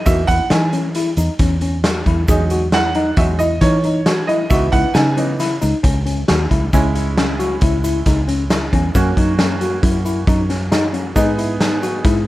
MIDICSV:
0, 0, Header, 1, 5, 480
1, 0, Start_track
1, 0, Tempo, 443459
1, 79, Time_signature, 5, 2, 24, 8
1, 13281, End_track
2, 0, Start_track
2, 0, Title_t, "Tine electric piano"
2, 0, Program_c, 0, 4
2, 68, Note_on_c, 0, 66, 82
2, 229, Note_off_c, 0, 66, 0
2, 316, Note_on_c, 0, 64, 75
2, 475, Note_off_c, 0, 64, 0
2, 550, Note_on_c, 0, 63, 70
2, 711, Note_off_c, 0, 63, 0
2, 792, Note_on_c, 0, 61, 72
2, 953, Note_off_c, 0, 61, 0
2, 1038, Note_on_c, 0, 64, 75
2, 1197, Note_off_c, 0, 64, 0
2, 1277, Note_on_c, 0, 63, 72
2, 1436, Note_off_c, 0, 63, 0
2, 1511, Note_on_c, 0, 61, 71
2, 1673, Note_off_c, 0, 61, 0
2, 1753, Note_on_c, 0, 61, 64
2, 1914, Note_off_c, 0, 61, 0
2, 1997, Note_on_c, 0, 66, 75
2, 2157, Note_off_c, 0, 66, 0
2, 2241, Note_on_c, 0, 64, 79
2, 2399, Note_off_c, 0, 64, 0
2, 2475, Note_on_c, 0, 68, 87
2, 2636, Note_off_c, 0, 68, 0
2, 2719, Note_on_c, 0, 66, 72
2, 2878, Note_off_c, 0, 66, 0
2, 2959, Note_on_c, 0, 64, 68
2, 3119, Note_off_c, 0, 64, 0
2, 3197, Note_on_c, 0, 63, 86
2, 3357, Note_off_c, 0, 63, 0
2, 3435, Note_on_c, 0, 66, 76
2, 3596, Note_off_c, 0, 66, 0
2, 3680, Note_on_c, 0, 64, 78
2, 3839, Note_off_c, 0, 64, 0
2, 3917, Note_on_c, 0, 63, 72
2, 4078, Note_off_c, 0, 63, 0
2, 4165, Note_on_c, 0, 63, 65
2, 4323, Note_off_c, 0, 63, 0
2, 4401, Note_on_c, 0, 66, 75
2, 4560, Note_off_c, 0, 66, 0
2, 4640, Note_on_c, 0, 64, 76
2, 4800, Note_off_c, 0, 64, 0
2, 4881, Note_on_c, 0, 66, 89
2, 5040, Note_off_c, 0, 66, 0
2, 5116, Note_on_c, 0, 64, 74
2, 5277, Note_off_c, 0, 64, 0
2, 5354, Note_on_c, 0, 63, 83
2, 5516, Note_off_c, 0, 63, 0
2, 5591, Note_on_c, 0, 61, 79
2, 5754, Note_off_c, 0, 61, 0
2, 5843, Note_on_c, 0, 64, 80
2, 6002, Note_off_c, 0, 64, 0
2, 6079, Note_on_c, 0, 63, 77
2, 6239, Note_off_c, 0, 63, 0
2, 6314, Note_on_c, 0, 61, 79
2, 6476, Note_off_c, 0, 61, 0
2, 6556, Note_on_c, 0, 61, 63
2, 6717, Note_off_c, 0, 61, 0
2, 6798, Note_on_c, 0, 66, 73
2, 6958, Note_off_c, 0, 66, 0
2, 7043, Note_on_c, 0, 64, 78
2, 7202, Note_off_c, 0, 64, 0
2, 7285, Note_on_c, 0, 61, 84
2, 7443, Note_off_c, 0, 61, 0
2, 7525, Note_on_c, 0, 64, 72
2, 7683, Note_off_c, 0, 64, 0
2, 7764, Note_on_c, 0, 61, 68
2, 7923, Note_off_c, 0, 61, 0
2, 8004, Note_on_c, 0, 66, 78
2, 8162, Note_off_c, 0, 66, 0
2, 8245, Note_on_c, 0, 64, 75
2, 8403, Note_off_c, 0, 64, 0
2, 8483, Note_on_c, 0, 64, 75
2, 8642, Note_off_c, 0, 64, 0
2, 8728, Note_on_c, 0, 63, 75
2, 8885, Note_off_c, 0, 63, 0
2, 8962, Note_on_c, 0, 61, 65
2, 9121, Note_off_c, 0, 61, 0
2, 9207, Note_on_c, 0, 64, 69
2, 9365, Note_off_c, 0, 64, 0
2, 9453, Note_on_c, 0, 61, 81
2, 9608, Note_off_c, 0, 61, 0
2, 9690, Note_on_c, 0, 61, 77
2, 9846, Note_off_c, 0, 61, 0
2, 9931, Note_on_c, 0, 63, 68
2, 10087, Note_off_c, 0, 63, 0
2, 10170, Note_on_c, 0, 61, 81
2, 10326, Note_off_c, 0, 61, 0
2, 10401, Note_on_c, 0, 66, 70
2, 10560, Note_off_c, 0, 66, 0
2, 10638, Note_on_c, 0, 64, 69
2, 10798, Note_off_c, 0, 64, 0
2, 10879, Note_on_c, 0, 64, 66
2, 11039, Note_off_c, 0, 64, 0
2, 11121, Note_on_c, 0, 63, 75
2, 11280, Note_off_c, 0, 63, 0
2, 11359, Note_on_c, 0, 61, 69
2, 11518, Note_off_c, 0, 61, 0
2, 11599, Note_on_c, 0, 63, 84
2, 11759, Note_off_c, 0, 63, 0
2, 11832, Note_on_c, 0, 61, 68
2, 11994, Note_off_c, 0, 61, 0
2, 12079, Note_on_c, 0, 63, 87
2, 12239, Note_off_c, 0, 63, 0
2, 12322, Note_on_c, 0, 64, 73
2, 12480, Note_off_c, 0, 64, 0
2, 12563, Note_on_c, 0, 63, 74
2, 12721, Note_off_c, 0, 63, 0
2, 12803, Note_on_c, 0, 66, 79
2, 12961, Note_off_c, 0, 66, 0
2, 13040, Note_on_c, 0, 64, 73
2, 13199, Note_off_c, 0, 64, 0
2, 13281, End_track
3, 0, Start_track
3, 0, Title_t, "Grand piano"
3, 0, Program_c, 1, 0
3, 61, Note_on_c, 1, 76, 83
3, 66, Note_on_c, 1, 52, 51
3, 70, Note_on_c, 1, 58, 47
3, 76, Note_on_c, 1, 63, 47
3, 293, Note_off_c, 1, 76, 0
3, 296, Note_on_c, 1, 78, 104
3, 392, Note_off_c, 1, 52, 0
3, 394, Note_off_c, 1, 58, 0
3, 397, Note_off_c, 1, 63, 0
3, 531, Note_off_c, 1, 78, 0
3, 553, Note_on_c, 1, 80, 88
3, 780, Note_off_c, 1, 80, 0
3, 2481, Note_on_c, 1, 54, 47
3, 2481, Note_on_c, 1, 56, 44
3, 2489, Note_on_c, 1, 63, 59
3, 2801, Note_off_c, 1, 54, 0
3, 2801, Note_off_c, 1, 56, 0
3, 2806, Note_off_c, 1, 63, 0
3, 2964, Note_on_c, 1, 78, 91
3, 3411, Note_off_c, 1, 78, 0
3, 3433, Note_on_c, 1, 76, 74
3, 3437, Note_on_c, 1, 54, 46
3, 3441, Note_on_c, 1, 63, 52
3, 3443, Note_on_c, 1, 56, 43
3, 3489, Note_off_c, 1, 76, 0
3, 3656, Note_off_c, 1, 54, 0
3, 3659, Note_off_c, 1, 63, 0
3, 3660, Note_off_c, 1, 56, 0
3, 3666, Note_on_c, 1, 75, 80
3, 3898, Note_off_c, 1, 75, 0
3, 3908, Note_on_c, 1, 73, 82
3, 4625, Note_on_c, 1, 75, 74
3, 4659, Note_off_c, 1, 73, 0
3, 4858, Note_off_c, 1, 75, 0
3, 4868, Note_on_c, 1, 76, 80
3, 4871, Note_on_c, 1, 52, 55
3, 4881, Note_on_c, 1, 59, 48
3, 4888, Note_on_c, 1, 63, 50
3, 5108, Note_on_c, 1, 78, 94
3, 5125, Note_off_c, 1, 76, 0
3, 5346, Note_on_c, 1, 80, 84
3, 5365, Note_off_c, 1, 78, 0
3, 5562, Note_off_c, 1, 52, 0
3, 5568, Note_off_c, 1, 59, 0
3, 5571, Note_off_c, 1, 63, 0
3, 5579, Note_off_c, 1, 80, 0
3, 5595, Note_on_c, 1, 52, 41
3, 5595, Note_on_c, 1, 59, 35
3, 5600, Note_on_c, 1, 63, 46
3, 5816, Note_off_c, 1, 52, 0
3, 5816, Note_off_c, 1, 59, 0
3, 5819, Note_off_c, 1, 63, 0
3, 7290, Note_on_c, 1, 64, 69
3, 7291, Note_on_c, 1, 56, 62
3, 7296, Note_on_c, 1, 61, 59
3, 9645, Note_off_c, 1, 56, 0
3, 9645, Note_off_c, 1, 64, 0
3, 9647, Note_off_c, 1, 61, 0
3, 9687, Note_on_c, 1, 58, 68
3, 9693, Note_on_c, 1, 61, 63
3, 9693, Note_on_c, 1, 66, 68
3, 12042, Note_off_c, 1, 58, 0
3, 12045, Note_off_c, 1, 61, 0
3, 12045, Note_off_c, 1, 66, 0
3, 12077, Note_on_c, 1, 59, 67
3, 12079, Note_on_c, 1, 63, 65
3, 12079, Note_on_c, 1, 68, 72
3, 13281, Note_off_c, 1, 59, 0
3, 13281, Note_off_c, 1, 63, 0
3, 13281, Note_off_c, 1, 68, 0
3, 13281, End_track
4, 0, Start_track
4, 0, Title_t, "Fingered electric bass"
4, 0, Program_c, 2, 33
4, 72, Note_on_c, 2, 40, 107
4, 294, Note_off_c, 2, 40, 0
4, 306, Note_on_c, 2, 40, 80
4, 422, Note_off_c, 2, 40, 0
4, 550, Note_on_c, 2, 52, 92
4, 1233, Note_off_c, 2, 52, 0
4, 1267, Note_on_c, 2, 40, 92
4, 1383, Note_off_c, 2, 40, 0
4, 1510, Note_on_c, 2, 40, 86
4, 2194, Note_off_c, 2, 40, 0
4, 2234, Note_on_c, 2, 40, 82
4, 2457, Note_off_c, 2, 40, 0
4, 2475, Note_on_c, 2, 40, 91
4, 3397, Note_off_c, 2, 40, 0
4, 3431, Note_on_c, 2, 40, 87
4, 3875, Note_off_c, 2, 40, 0
4, 3911, Note_on_c, 2, 52, 94
4, 4836, Note_off_c, 2, 52, 0
4, 4875, Note_on_c, 2, 37, 108
4, 5099, Note_off_c, 2, 37, 0
4, 5118, Note_on_c, 2, 37, 88
4, 5231, Note_off_c, 2, 37, 0
4, 5355, Note_on_c, 2, 49, 98
4, 6037, Note_off_c, 2, 49, 0
4, 6089, Note_on_c, 2, 37, 92
4, 6197, Note_off_c, 2, 37, 0
4, 6321, Note_on_c, 2, 37, 80
4, 6760, Note_off_c, 2, 37, 0
4, 6815, Note_on_c, 2, 39, 73
4, 7027, Note_off_c, 2, 39, 0
4, 7045, Note_on_c, 2, 37, 79
4, 7262, Note_off_c, 2, 37, 0
4, 7292, Note_on_c, 2, 37, 93
4, 8206, Note_off_c, 2, 37, 0
4, 8244, Note_on_c, 2, 37, 90
4, 8682, Note_off_c, 2, 37, 0
4, 8729, Note_on_c, 2, 37, 81
4, 9404, Note_off_c, 2, 37, 0
4, 9446, Note_on_c, 2, 40, 76
4, 9664, Note_off_c, 2, 40, 0
4, 9684, Note_on_c, 2, 42, 91
4, 9903, Note_off_c, 2, 42, 0
4, 9926, Note_on_c, 2, 42, 83
4, 10602, Note_off_c, 2, 42, 0
4, 10640, Note_on_c, 2, 42, 90
4, 11079, Note_off_c, 2, 42, 0
4, 11119, Note_on_c, 2, 42, 93
4, 12038, Note_off_c, 2, 42, 0
4, 12076, Note_on_c, 2, 44, 94
4, 12996, Note_off_c, 2, 44, 0
4, 13043, Note_on_c, 2, 44, 96
4, 13281, Note_off_c, 2, 44, 0
4, 13281, End_track
5, 0, Start_track
5, 0, Title_t, "Drums"
5, 64, Note_on_c, 9, 42, 79
5, 68, Note_on_c, 9, 36, 104
5, 68, Note_on_c, 9, 82, 55
5, 172, Note_off_c, 9, 42, 0
5, 176, Note_off_c, 9, 36, 0
5, 176, Note_off_c, 9, 82, 0
5, 306, Note_on_c, 9, 42, 60
5, 307, Note_on_c, 9, 36, 76
5, 307, Note_on_c, 9, 82, 19
5, 414, Note_off_c, 9, 42, 0
5, 415, Note_off_c, 9, 36, 0
5, 415, Note_off_c, 9, 82, 0
5, 544, Note_on_c, 9, 38, 107
5, 544, Note_on_c, 9, 42, 76
5, 652, Note_off_c, 9, 38, 0
5, 652, Note_off_c, 9, 42, 0
5, 787, Note_on_c, 9, 42, 59
5, 895, Note_off_c, 9, 42, 0
5, 1024, Note_on_c, 9, 42, 84
5, 1133, Note_off_c, 9, 42, 0
5, 1263, Note_on_c, 9, 42, 62
5, 1276, Note_on_c, 9, 82, 48
5, 1371, Note_off_c, 9, 42, 0
5, 1384, Note_off_c, 9, 82, 0
5, 1505, Note_on_c, 9, 42, 77
5, 1509, Note_on_c, 9, 36, 97
5, 1613, Note_off_c, 9, 42, 0
5, 1618, Note_off_c, 9, 36, 0
5, 1743, Note_on_c, 9, 42, 57
5, 1851, Note_off_c, 9, 42, 0
5, 1990, Note_on_c, 9, 38, 124
5, 1990, Note_on_c, 9, 42, 86
5, 2098, Note_off_c, 9, 38, 0
5, 2098, Note_off_c, 9, 42, 0
5, 2231, Note_on_c, 9, 36, 61
5, 2232, Note_on_c, 9, 42, 54
5, 2340, Note_off_c, 9, 36, 0
5, 2340, Note_off_c, 9, 42, 0
5, 2470, Note_on_c, 9, 42, 76
5, 2470, Note_on_c, 9, 82, 64
5, 2472, Note_on_c, 9, 36, 112
5, 2578, Note_off_c, 9, 82, 0
5, 2579, Note_off_c, 9, 42, 0
5, 2581, Note_off_c, 9, 36, 0
5, 2706, Note_on_c, 9, 42, 63
5, 2707, Note_on_c, 9, 82, 19
5, 2814, Note_off_c, 9, 42, 0
5, 2815, Note_off_c, 9, 82, 0
5, 2948, Note_on_c, 9, 38, 107
5, 2948, Note_on_c, 9, 42, 74
5, 3056, Note_off_c, 9, 38, 0
5, 3056, Note_off_c, 9, 42, 0
5, 3188, Note_on_c, 9, 42, 50
5, 3296, Note_off_c, 9, 42, 0
5, 3427, Note_on_c, 9, 42, 77
5, 3433, Note_on_c, 9, 36, 117
5, 3535, Note_off_c, 9, 42, 0
5, 3541, Note_off_c, 9, 36, 0
5, 3668, Note_on_c, 9, 42, 57
5, 3680, Note_on_c, 9, 82, 41
5, 3776, Note_off_c, 9, 42, 0
5, 3788, Note_off_c, 9, 82, 0
5, 3908, Note_on_c, 9, 38, 35
5, 3908, Note_on_c, 9, 42, 80
5, 3912, Note_on_c, 9, 36, 95
5, 4017, Note_off_c, 9, 38, 0
5, 4017, Note_off_c, 9, 42, 0
5, 4021, Note_off_c, 9, 36, 0
5, 4151, Note_on_c, 9, 42, 53
5, 4260, Note_off_c, 9, 42, 0
5, 4394, Note_on_c, 9, 38, 124
5, 4394, Note_on_c, 9, 42, 88
5, 4502, Note_off_c, 9, 38, 0
5, 4502, Note_off_c, 9, 42, 0
5, 4642, Note_on_c, 9, 42, 55
5, 4750, Note_off_c, 9, 42, 0
5, 4874, Note_on_c, 9, 82, 54
5, 4876, Note_on_c, 9, 36, 97
5, 4877, Note_on_c, 9, 42, 89
5, 4982, Note_off_c, 9, 82, 0
5, 4984, Note_off_c, 9, 36, 0
5, 4985, Note_off_c, 9, 42, 0
5, 5117, Note_on_c, 9, 36, 83
5, 5117, Note_on_c, 9, 42, 65
5, 5225, Note_off_c, 9, 36, 0
5, 5226, Note_off_c, 9, 42, 0
5, 5346, Note_on_c, 9, 82, 15
5, 5355, Note_on_c, 9, 38, 101
5, 5355, Note_on_c, 9, 42, 82
5, 5454, Note_off_c, 9, 82, 0
5, 5463, Note_off_c, 9, 38, 0
5, 5463, Note_off_c, 9, 42, 0
5, 5601, Note_on_c, 9, 42, 59
5, 5709, Note_off_c, 9, 42, 0
5, 5832, Note_on_c, 9, 82, 18
5, 5842, Note_on_c, 9, 38, 33
5, 5842, Note_on_c, 9, 42, 87
5, 5941, Note_off_c, 9, 82, 0
5, 5950, Note_off_c, 9, 38, 0
5, 5950, Note_off_c, 9, 42, 0
5, 6079, Note_on_c, 9, 42, 56
5, 6082, Note_on_c, 9, 82, 40
5, 6187, Note_off_c, 9, 42, 0
5, 6190, Note_off_c, 9, 82, 0
5, 6319, Note_on_c, 9, 42, 91
5, 6321, Note_on_c, 9, 36, 97
5, 6428, Note_off_c, 9, 42, 0
5, 6429, Note_off_c, 9, 36, 0
5, 6564, Note_on_c, 9, 42, 62
5, 6673, Note_off_c, 9, 42, 0
5, 6801, Note_on_c, 9, 38, 123
5, 6801, Note_on_c, 9, 42, 89
5, 6909, Note_off_c, 9, 38, 0
5, 6909, Note_off_c, 9, 42, 0
5, 7046, Note_on_c, 9, 36, 64
5, 7048, Note_on_c, 9, 42, 57
5, 7154, Note_off_c, 9, 36, 0
5, 7156, Note_off_c, 9, 42, 0
5, 7286, Note_on_c, 9, 42, 74
5, 7287, Note_on_c, 9, 36, 100
5, 7290, Note_on_c, 9, 82, 56
5, 7394, Note_off_c, 9, 42, 0
5, 7395, Note_off_c, 9, 36, 0
5, 7398, Note_off_c, 9, 82, 0
5, 7526, Note_on_c, 9, 42, 58
5, 7635, Note_off_c, 9, 42, 0
5, 7767, Note_on_c, 9, 38, 98
5, 7767, Note_on_c, 9, 42, 71
5, 7875, Note_off_c, 9, 38, 0
5, 7875, Note_off_c, 9, 42, 0
5, 8007, Note_on_c, 9, 42, 58
5, 8011, Note_on_c, 9, 82, 17
5, 8116, Note_off_c, 9, 42, 0
5, 8119, Note_off_c, 9, 82, 0
5, 8237, Note_on_c, 9, 42, 86
5, 8246, Note_on_c, 9, 36, 109
5, 8346, Note_off_c, 9, 42, 0
5, 8355, Note_off_c, 9, 36, 0
5, 8485, Note_on_c, 9, 82, 43
5, 8487, Note_on_c, 9, 42, 63
5, 8594, Note_off_c, 9, 82, 0
5, 8596, Note_off_c, 9, 42, 0
5, 8722, Note_on_c, 9, 38, 32
5, 8722, Note_on_c, 9, 42, 84
5, 8726, Note_on_c, 9, 36, 99
5, 8730, Note_on_c, 9, 82, 15
5, 8830, Note_off_c, 9, 38, 0
5, 8830, Note_off_c, 9, 42, 0
5, 8834, Note_off_c, 9, 36, 0
5, 8838, Note_off_c, 9, 82, 0
5, 8967, Note_on_c, 9, 42, 64
5, 9075, Note_off_c, 9, 42, 0
5, 9205, Note_on_c, 9, 38, 114
5, 9205, Note_on_c, 9, 42, 84
5, 9205, Note_on_c, 9, 82, 17
5, 9313, Note_off_c, 9, 38, 0
5, 9313, Note_off_c, 9, 42, 0
5, 9313, Note_off_c, 9, 82, 0
5, 9448, Note_on_c, 9, 36, 65
5, 9449, Note_on_c, 9, 42, 55
5, 9556, Note_off_c, 9, 36, 0
5, 9557, Note_off_c, 9, 42, 0
5, 9688, Note_on_c, 9, 36, 107
5, 9688, Note_on_c, 9, 82, 51
5, 9692, Note_on_c, 9, 42, 79
5, 9796, Note_off_c, 9, 36, 0
5, 9796, Note_off_c, 9, 82, 0
5, 9800, Note_off_c, 9, 42, 0
5, 9926, Note_on_c, 9, 36, 81
5, 9931, Note_on_c, 9, 42, 59
5, 10034, Note_off_c, 9, 36, 0
5, 10039, Note_off_c, 9, 42, 0
5, 10160, Note_on_c, 9, 38, 106
5, 10160, Note_on_c, 9, 42, 82
5, 10269, Note_off_c, 9, 38, 0
5, 10269, Note_off_c, 9, 42, 0
5, 10401, Note_on_c, 9, 42, 62
5, 10407, Note_on_c, 9, 82, 16
5, 10509, Note_off_c, 9, 42, 0
5, 10516, Note_off_c, 9, 82, 0
5, 10640, Note_on_c, 9, 42, 84
5, 10641, Note_on_c, 9, 36, 104
5, 10748, Note_off_c, 9, 42, 0
5, 10749, Note_off_c, 9, 36, 0
5, 10884, Note_on_c, 9, 42, 52
5, 10887, Note_on_c, 9, 82, 44
5, 10992, Note_off_c, 9, 42, 0
5, 10995, Note_off_c, 9, 82, 0
5, 11120, Note_on_c, 9, 36, 103
5, 11124, Note_on_c, 9, 42, 72
5, 11133, Note_on_c, 9, 82, 17
5, 11228, Note_off_c, 9, 36, 0
5, 11232, Note_off_c, 9, 42, 0
5, 11241, Note_off_c, 9, 82, 0
5, 11363, Note_on_c, 9, 38, 33
5, 11363, Note_on_c, 9, 42, 57
5, 11471, Note_off_c, 9, 38, 0
5, 11471, Note_off_c, 9, 42, 0
5, 11604, Note_on_c, 9, 38, 115
5, 11604, Note_on_c, 9, 42, 88
5, 11609, Note_on_c, 9, 82, 19
5, 11712, Note_off_c, 9, 38, 0
5, 11712, Note_off_c, 9, 42, 0
5, 11718, Note_off_c, 9, 82, 0
5, 11839, Note_on_c, 9, 42, 49
5, 11948, Note_off_c, 9, 42, 0
5, 12079, Note_on_c, 9, 36, 102
5, 12081, Note_on_c, 9, 42, 81
5, 12083, Note_on_c, 9, 82, 64
5, 12187, Note_off_c, 9, 36, 0
5, 12189, Note_off_c, 9, 42, 0
5, 12191, Note_off_c, 9, 82, 0
5, 12324, Note_on_c, 9, 42, 66
5, 12432, Note_off_c, 9, 42, 0
5, 12562, Note_on_c, 9, 38, 99
5, 12562, Note_on_c, 9, 42, 76
5, 12670, Note_off_c, 9, 38, 0
5, 12670, Note_off_c, 9, 42, 0
5, 12803, Note_on_c, 9, 82, 20
5, 12804, Note_on_c, 9, 42, 62
5, 12912, Note_off_c, 9, 42, 0
5, 12912, Note_off_c, 9, 82, 0
5, 13038, Note_on_c, 9, 38, 35
5, 13038, Note_on_c, 9, 42, 80
5, 13039, Note_on_c, 9, 36, 108
5, 13146, Note_off_c, 9, 38, 0
5, 13146, Note_off_c, 9, 42, 0
5, 13147, Note_off_c, 9, 36, 0
5, 13281, End_track
0, 0, End_of_file